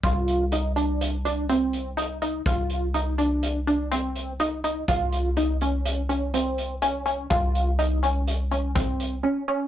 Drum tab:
HH |xxxxxxxxxx|xxxxxxxxxx|xxxxxxxxxx|xxxxxxxx--|
BD |o---------|o---------|o---------|o-----o---|